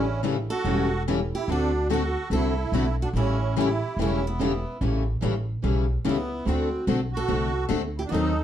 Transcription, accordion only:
Already playing: C#4
0.50 F#4
1.35 E4
1.49 D4
1.90 F#4
2.34 E4
3.03 D4
3.17 C#4
3.58 E4
4.00 C#4
4.25 B3
6.07 B3
6.47 C4
7.12 F#4
7.98 E4
8.05 D4
8.10 D#4

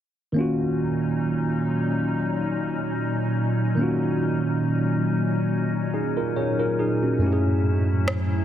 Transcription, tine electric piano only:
0.32 D#3 A#3
0.36 C#4 F4
0.41 F#4
3.75 D#3 A#3
3.79 C#4 F4
3.83 F#4
5.94 D#4 G#4
6.17 F4 A#4
6.36 G#4 C#5
6.59 F4 A#4
6.79 D#4 G#4
7.02 C#4 F#4
7.18 F#2 A3
7.22 C#4 E4
7.26 G4
7.33 G#4

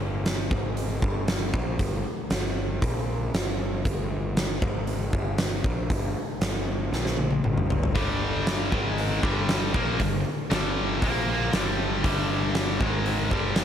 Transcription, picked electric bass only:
Already playing: G1
0.51 G#1
1.03 G1
1.54 A#1
1.79 G1
2.31 G1
2.82 A#1
3.34 G1
3.85 G1
4.62 G#1
5.13 G1
5.64 A#1
5.90 G1
6.41 G1
6.92 A#1
7.44 G1
7.96 G1
8.73 G#1
9.24 G1
9.75 A#1
10.00 G1
10.51 G1
11.02 A#1
11.53 G1
12.04 G1
12.81 G#1
13.31 G1

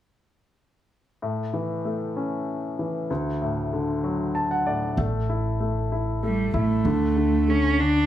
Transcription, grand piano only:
1.22 A2
1.53 E3
1.85 A3
2.16 C#4
2.79 E3
3.10 D2
3.42 A2
3.73 D3
4.04 F#3
4.35 A5
4.51 F#5
4.66 A2 D5
4.98 A3
5.29 E4
5.60 A3
5.92 E4
6.23 A3
6.54 E4
6.86 D3
7.16 D3
7.48 D3
7.79 D3

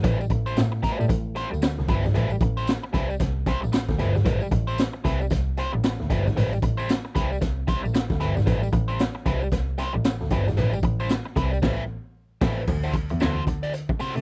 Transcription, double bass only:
0.04 A1
0.30 A1
0.57 A2
0.83 A2
0.99 A2
1.10 A1
1.52 D2
1.78 C2
1.88 G1
2.05 G#1
2.16 A1
2.41 A1
2.94 C2
3.20 C2
3.63 A1
3.89 D2
4.00 G1
4.15 G#1
4.25 A1
4.52 A1
5.05 C2
5.31 C2
5.74 A1
6.00 D2
6.10 G1
6.26 G#1
6.37 A1
6.63 A1
7.16 C2
7.42 C2
7.84 A1
8.10 D2
8.21 G1
8.37 G#1
8.47 A1
8.73 A1
9.26 C2
9.52 C2
9.94 A1
10.21 D2
10.31 G1
10.48 G#1
10.59 A1
10.83 A1
11.36 C2
11.63 A1
12.42 A1
12.68 D2
13.11 E2
13.21 D2
13.47 D3
14.00 C3
14.15 C3

